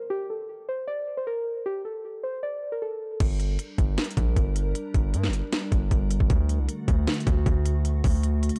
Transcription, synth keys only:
0.10 G4
0.30 A4
0.69 C5
0.88 D5
1.17 C5
1.27 A#4
1.66 G4
1.85 A4
2.23 C5
2.43 D5
2.72 A#4
2.82 A4

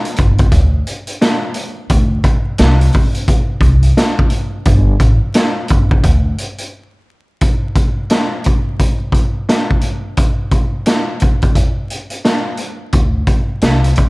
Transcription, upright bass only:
0.19 G1
0.52 D2
1.90 D2
2.59 C2
3.61 C2
4.66 G1
5.00 A1
5.71 G1
6.04 D2
12.93 D2
13.62 C2

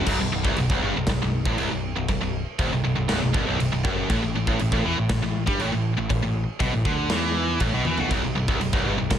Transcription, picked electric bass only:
0.07 B0
0.21 B0
0.33 B0
0.45 C1
0.58 B0
0.70 B0
0.83 G1
0.95 B0
1.07 B0
1.22 B0
1.46 A1
1.59 C1
1.71 B0
1.96 B0
2.09 B0
2.21 B0
2.59 D1
2.72 B0
2.85 B0
2.97 B0
3.11 B0
3.23 B0
3.34 C1
3.47 B0
3.60 B0
3.73 B0
3.85 F#1
4.10 A1
4.24 A1
4.35 A1
4.47 A1
4.61 A1
4.72 A1
4.85 E2
4.98 A1
5.10 A1
5.23 A1
5.48 G2
5.60 A1
5.73 A1
5.98 A1
6.10 A1
6.23 A1
6.60 B1
6.73 A1
6.85 D2
7.11 E2
7.61 A1
7.74 B1
7.86 E2
8.00 B1
8.11 B0
8.25 B0
8.38 B0
8.48 C1
8.63 B0
8.73 B0
8.88 G1
9.00 B0
9.11 B0

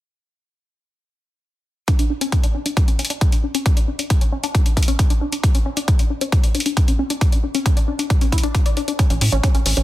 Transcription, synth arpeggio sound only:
1.88 D4
1.99 D4
2.10 D4
2.21 C#4
2.32 C#4
2.43 D4
2.55 D4
2.66 D4
2.77 D4
2.88 C#4
2.99 C#4
3.10 D4
3.21 D4
3.32 D4
3.43 D4
3.55 C#4
3.66 C#4
3.77 D4
3.88 D4
3.99 D4
4.10 D4
4.21 C#4
4.32 C#4
4.44 D4
4.55 D4
4.66 D4
4.77 D4
4.88 C#4
4.99 C#4
5.10 D4
5.21 D4
5.32 D4
5.44 D4
5.55 C#4
5.66 C#4
5.77 D4
5.88 D4
5.99 D4
6.10 D4
6.21 C#4
6.32 C#4
6.44 D4
6.55 D4
6.66 D4
6.77 D4
6.88 C#4
6.99 C#4
7.10 D4
7.21 D4
7.32 D4
7.44 D4
7.55 C#4
7.66 C#4
7.77 D4
7.88 D4
7.99 D4
8.10 D4
8.21 C#4
8.32 E4
8.44 D4
8.55 F4
8.66 D5
8.77 D4
8.88 D4
8.99 C#4
9.10 C#4
9.21 C#4
9.32 C#4
9.44 C#4
9.55 C#4
9.66 C#4
9.77 C#4

